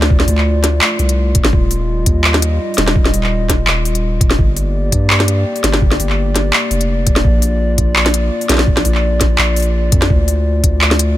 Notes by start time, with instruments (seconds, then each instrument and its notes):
Already playing: 808-style bass D2, analog synth pad A3 F4 D5
0.02 snare
0.10 kick
0.20 snare
0.28 808-style bass D2, open hi-hat
0.38 clap
0.64 snare, closed hi-hat
0.81 clap
0.99 808-style bass C2, open hi-hat
1.09 closed hi-hat
1.35 kick, closed hi-hat
1.45 snare
1.53 808-style bass D#1, analog synth pad G3 D#5, kick
1.71 open hi-hat
2.06 808-style bass D#2, kick, closed hi-hat
2.24 clap
2.34 snare
2.42 closed hi-hat
2.74 808-style bass D#1, open hi-hat
2.78 snare, closed hi-hat
2.88 snare
2.96 kick
3.06 snare
3.14 808-style bass D#1, open hi-hat
3.23 clap
3.49 kick, snare, closed hi-hat
3.67 808-style bass D#1, clap
3.85 open hi-hat
3.95 closed hi-hat
4.21 kick, closed hi-hat
4.31 snare
4.38 808-style bass G1, analog synth pad A#3 G4 D5, kick
4.57 open hi-hat
4.92 808-style bass G2, kick, closed hi-hat
5.10 clap
5.20 snare
5.28 closed hi-hat
5.56 open hi-hat
5.64 808-style bass G1, snare, closed hi-hat
5.74 snare
5.82 kick
5.92 snare
5.99 808-style bass G1, open hi-hat
6.10 clap
6.36 snare, closed hi-hat
6.53 clap
6.71 808-style bass F1, open hi-hat
6.81 closed hi-hat
7.07 kick, closed hi-hat
7.16 snare
7.25 808-style bass A#1, analog synth pad F4, kick
7.42 open hi-hat
7.78 808-style bass A#1, kick, closed hi-hat
7.96 clap
8.06 snare
8.14 closed hi-hat
8.41 open hi-hat
8.49 808-style bass A#1, snare, closed hi-hat
8.52 snare
8.54 snare
8.57 snare
8.59 snare
8.67 kick
8.77 snare
8.85 808-style bass A#1, open hi-hat
8.95 clap
9.21 kick, snare, closed hi-hat
9.38 808-style bass A#1, clap
9.56 open hi-hat
9.60 open hi-hat
9.62 open hi-hat
9.92 808-style bass F2, kick, closed hi-hat
10.02 snare
10.10 808-style bass D2, analog synth pad A3, kick
10.28 open hi-hat
10.64 808-style bass D2, kick, closed hi-hat
10.81 clap
10.91 snare
10.99 closed hi-hat